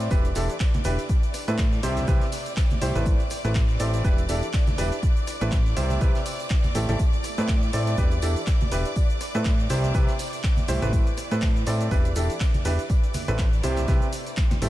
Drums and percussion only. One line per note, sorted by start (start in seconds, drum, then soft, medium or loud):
0.00 closed hi-hat soft
0.00 closed hi-hat medium
0.00 shaker soft
0.10 kick loud
0.10 closed hi-hat medium
0.10 tambourine medium
0.10 shaker medium
0.10 shaker soft
0.25 closed hi-hat soft
0.25 tambourine soft
0.25 shaker soft
0.35 snare medium
0.35 open hi-hat loud
0.35 tambourine medium
0.35 shaker medium
0.50 closed hi-hat medium
0.50 tambourine soft
0.50 shaker soft
0.60 kick loud
0.60 snare loud
0.60 clap loud
0.60 closed hi-hat medium
0.60 tambourine medium
0.60 shaker medium
0.60 shaker soft
0.74 closed hi-hat soft
0.74 tambourine soft
0.74 high conga medium
0.74 shaker soft
0.84 open hi-hat loud
0.84 tambourine medium
0.84 shaker medium
0.99 closed hi-hat medium
0.99 tambourine soft
0.99 shaker soft
1.09 kick loud
1.09 closed hi-hat medium
1.09 tambourine soft
1.09 shaker medium
1.09 shaker soft
1.23 closed hi-hat soft
1.23 tambourine soft
1.23 shaker soft
1.33 cross-stick medium
1.33 snare soft
1.33 open hi-hat loud
1.33 tambourine loud
1.33 shaker medium
1.48 closed hi-hat medium
1.48 tambourine soft
1.48 shaker soft
1.58 kick loud
1.58 snare loud
1.58 clap loud
1.58 closed hi-hat medium
1.58 tambourine medium
1.58 shaker medium
1.58 shaker soft
1.73 tambourine soft
1.73 shaker soft
1.83 open hi-hat loud
1.83 tambourine loud
1.83 shaker medium
1.97 snare medium
1.97 closed hi-hat medium
1.97 tambourine soft
1.97 high conga medium
1.97 shaker soft
2.08 kick loud
2.08 closed hi-hat medium
2.08 tambourine soft
2.08 shaker medium
2.08 shaker soft
2.21 snare medium
2.21 closed hi-hat soft
2.21 tambourine soft
2.21 shaker soft
2.32 open hi-hat medium
2.32 open hi-hat loud
2.32 tambourine loud
2.32 shaker medium
2.46 closed hi-hat medium
2.46 tambourine soft
2.46 shaker soft
2.57 kick loud
2.57 snare loud
2.57 clap loud
2.57 closed hi-hat medium
2.57 tambourine medium
2.57 shaker soft
2.57 shaker medium
2.70 closed hi-hat soft
2.70 tambourine soft
2.70 high conga medium
2.70 shaker soft
2.82 snare soft
2.82 open hi-hat loud
2.82 tambourine medium
2.82 shaker medium
2.95 closed hi-hat medium
2.95 tambourine soft
2.95 high conga medium
2.95 shaker soft
3.06 kick loud
3.06 closed hi-hat medium
3.06 tambourine soft
3.06 shaker medium
3.06 shaker soft
3.20 closed hi-hat soft
3.20 tambourine soft
3.20 shaker soft
3.30 cross-stick medium
3.30 open hi-hat loud
3.30 tambourine medium
3.30 shaker medium
3.44 snare soft
3.44 closed hi-hat medium
3.44 tambourine soft
3.44 shaker soft
3.55 kick loud
3.55 snare loud
3.55 clap loud
3.55 closed hi-hat medium
3.55 tambourine soft
3.55 shaker medium
3.55 shaker soft
3.68 tambourine soft
3.68 shaker soft
3.80 open hi-hat loud
3.80 tambourine medium
3.80 shaker medium
3.93 closed hi-hat soft
3.93 tambourine soft
3.93 shaker soft
4.04 kick loud
4.04 closed hi-hat medium
4.04 tambourine soft
4.04 shaker medium
4.04 shaker soft
4.18 closed hi-hat soft
4.18 tambourine soft
4.18 shaker soft
4.29 snare medium
4.29 open hi-hat loud
4.29 tambourine loud
4.29 shaker medium
4.42 closed hi-hat medium
4.42 tambourine soft
4.42 shaker soft
4.53 kick loud
4.53 snare loud
4.53 clap loud
4.53 closed hi-hat medium
4.53 tambourine medium
4.53 shaker medium
4.53 shaker soft
4.66 closed hi-hat soft
4.66 tambourine soft
4.66 high conga loud
4.66 shaker soft
4.78 open hi-hat loud
4.78 tambourine medium
4.78 shaker medium
4.92 closed hi-hat medium
4.92 tambourine soft
4.92 shaker soft
5.03 kick loud
5.03 closed hi-hat medium
5.03 tambourine soft
5.03 shaker medium
5.03 shaker soft
5.17 closed hi-hat soft
5.17 tambourine soft
5.17 shaker soft
5.27 cross-stick medium
5.27 snare soft
5.27 open hi-hat loud
5.27 tambourine medium
5.27 shaker medium
5.41 closed hi-hat medium
5.41 tambourine soft
5.41 shaker soft
5.51 kick loud
5.51 snare loud
5.51 clap loud
5.51 closed hi-hat medium
5.51 tambourine medium
5.51 shaker soft
5.51 shaker medium
5.66 tambourine soft
5.66 shaker soft
5.77 open hi-hat loud
5.77 tambourine loud
5.77 shaker medium
5.90 snare medium
5.90 closed hi-hat soft
5.90 tambourine soft
5.90 high conga medium
5.90 shaker soft
6.01 kick loud
6.01 closed hi-hat medium
6.01 tambourine medium
6.01 shaker medium
6.01 shaker soft
6.15 snare medium
6.15 closed hi-hat soft
6.15 tambourine soft
6.15 shaker soft
6.26 open hi-hat loud
6.26 open hi-hat medium
6.26 tambourine loud
6.26 shaker medium
6.40 closed hi-hat soft
6.40 tambourine soft
6.40 shaker soft
6.50 kick loud
6.50 snare loud
6.50 clap loud
6.50 closed hi-hat medium
6.50 tambourine soft
6.50 shaker medium
6.50 shaker soft
6.63 closed hi-hat soft
6.63 tambourine soft
6.63 high conga medium
6.63 shaker soft
6.75 snare soft
6.75 open hi-hat loud
6.75 tambourine medium
6.75 shaker medium
6.89 closed hi-hat soft
6.89 tambourine soft
6.89 high conga medium
6.89 shaker soft
6.99 kick loud
6.99 closed hi-hat medium
6.99 tambourine medium
6.99 shaker medium
6.99 shaker soft
7.13 closed hi-hat soft
7.13 tambourine soft
7.13 shaker soft
7.23 cross-stick medium
7.23 open hi-hat loud
7.23 tambourine medium
7.23 shaker medium
7.37 snare soft
7.37 closed hi-hat medium
7.37 tambourine soft
7.37 shaker soft
7.48 kick loud
7.48 snare loud
7.48 clap loud
7.48 closed hi-hat medium
7.48 tambourine soft
7.48 shaker medium
7.48 shaker soft
7.63 tambourine soft
7.63 shaker soft
7.73 open hi-hat loud
7.73 tambourine loud
7.73 shaker medium
7.87 closed hi-hat soft
7.87 closed hi-hat medium
7.87 tambourine soft
7.87 shaker soft
7.97 kick loud
7.97 closed hi-hat medium
7.97 tambourine soft
7.97 shaker loud
7.97 shaker soft
8.11 closed hi-hat soft
8.11 tambourine soft
8.11 shaker soft
8.22 snare soft
8.22 open hi-hat loud
8.22 tambourine loud
8.22 shaker medium
8.36 closed hi-hat soft
8.36 tambourine soft
8.36 shaker soft
8.47 kick loud
8.47 snare loud
8.47 clap loud
8.47 closed hi-hat medium
8.47 tambourine medium
8.47 shaker medium
8.47 shaker soft
8.61 closed hi-hat soft
8.61 tambourine soft
8.61 high conga loud
8.61 shaker soft
8.72 open hi-hat loud
8.72 tambourine medium
8.72 shaker medium
8.85 closed hi-hat medium
8.85 tambourine soft
8.85 shaker soft
8.96 kick loud
8.96 closed hi-hat medium
8.96 tambourine medium
8.96 shaker soft
8.96 shaker medium
9.10 closed hi-hat soft
9.10 tambourine soft
9.10 shaker soft
9.20 cross-stick medium
9.20 snare soft
9.20 open hi-hat loud
9.20 tambourine loud
9.20 shaker medium
9.35 closed hi-hat medium
9.35 tambourine soft
9.35 shaker soft
9.45 kick loud
9.45 snare loud
9.45 clap loud
9.45 closed hi-hat medium
9.45 tambourine soft
9.45 shaker medium
9.45 shaker soft
9.60 tambourine soft
9.60 shaker soft
9.69 open hi-hat loud
9.69 tambourine loud
9.69 shaker medium
9.84 snare medium
9.84 closed hi-hat medium
9.84 tambourine soft
9.84 high conga medium
9.84 shaker soft
9.94 kick loud
9.94 closed hi-hat medium
9.94 tambourine soft
9.94 shaker medium
9.94 shaker soft
10.08 snare soft
10.08 closed hi-hat soft
10.08 tambourine soft
10.08 shaker soft
10.19 open hi-hat medium
10.19 open hi-hat loud
10.19 tambourine medium
10.19 shaker medium
10.33 closed hi-hat medium
10.33 tambourine soft
10.33 shaker soft
10.44 kick loud
10.44 snare loud
10.44 clap loud
10.44 closed hi-hat medium
10.44 tambourine medium
10.44 shaker medium
10.44 shaker soft
10.57 closed hi-hat soft
10.57 tambourine soft
10.57 high conga medium
10.57 shaker soft
10.68 snare soft
10.68 open hi-hat loud
10.68 tambourine medium
10.68 shaker medium
10.82 closed hi-hat medium
10.82 tambourine soft
10.82 high conga medium
10.82 shaker soft
10.93 kick loud
10.93 closed hi-hat medium
10.93 tambourine soft
10.93 shaker medium
10.93 shaker soft
11.07 closed hi-hat soft
11.07 tambourine soft
11.07 shaker soft
11.17 cross-stick medium
11.17 open hi-hat loud
11.17 tambourine medium
11.17 shaker medium
11.31 snare soft
11.31 closed hi-hat medium
11.31 tambourine soft
11.31 shaker soft
11.41 kick loud
11.41 snare loud
11.41 clap loud
11.41 closed hi-hat medium
11.41 tambourine soft
11.41 shaker medium
11.41 shaker soft
11.56 tambourine soft
11.56 shaker soft
11.66 open hi-hat loud
11.66 tambourine loud
11.66 shaker medium
11.80 closed hi-hat medium
11.80 closed hi-hat soft
11.80 tambourine soft
11.80 shaker soft
11.91 kick loud
11.91 closed hi-hat medium
11.91 tambourine medium
11.91 shaker soft
11.91 shaker medium
12.05 closed hi-hat soft
12.05 tambourine soft
12.05 shaker soft
12.15 snare medium
12.15 open hi-hat loud
12.15 tambourine medium
12.15 shaker medium
12.30 closed hi-hat medium
12.30 tambourine soft
12.30 shaker soft
12.40 kick loud
12.40 snare loud
12.40 clap loud
12.40 closed hi-hat medium
12.40 tambourine soft
12.40 shaker medium
12.40 shaker soft
12.54 closed hi-hat soft
12.54 tambourine soft
12.54 high conga medium
12.54 shaker soft
12.65 open hi-hat loud
12.65 tambourine medium
12.65 shaker medium
12.79 closed hi-hat medium
12.79 tambourine soft
12.79 shaker soft
12.90 kick loud
12.90 closed hi-hat medium
12.90 tambourine medium
12.90 shaker soft
12.90 shaker medium
13.04 closed hi-hat soft
13.04 tambourine soft
13.04 shaker soft
13.14 cross-stick medium
13.14 snare soft
13.14 open hi-hat loud
13.14 tambourine medium
13.14 high conga medium
13.14 shaker medium
13.28 closed hi-hat medium
13.28 tambourine soft
13.28 shaker soft
13.38 kick loud
13.38 snare loud
13.38 clap loud
13.38 closed hi-hat medium
13.38 tambourine medium
13.38 shaker medium
13.38 shaker soft
13.53 tambourine soft
13.53 shaker soft
13.63 open hi-hat loud
13.63 tambourine medium
13.63 shaker medium
13.76 snare medium
13.76 closed hi-hat medium
13.76 tambourine soft
13.76 high conga medium
13.76 shaker soft
13.88 kick loud
13.88 snare medium
13.88 closed hi-hat medium
13.88 tambourine medium
13.88 shaker medium
13.88 shaker soft
14.02 closed hi-hat soft
14.02 tambourine soft
14.02 shaker soft
14.12 open hi-hat loud
14.12 tambourine medium
14.12 shaker medium
14.26 closed hi-hat medium
14.26 closed hi-hat soft
14.26 tambourine soft
14.26 shaker soft
14.36 kick loud
14.36 snare medium
14.36 clap loud
14.36 closed hi-hat medium
14.36 tambourine medium
14.36 shaker medium
14.36 shaker soft
14.51 snare medium
14.51 closed hi-hat soft
14.51 tambourine soft
14.51 high conga medium
14.51 shaker soft
14.62 snare medium
14.62 snare soft
14.62 open hi-hat loud
14.62 tambourine medium
14.62 shaker medium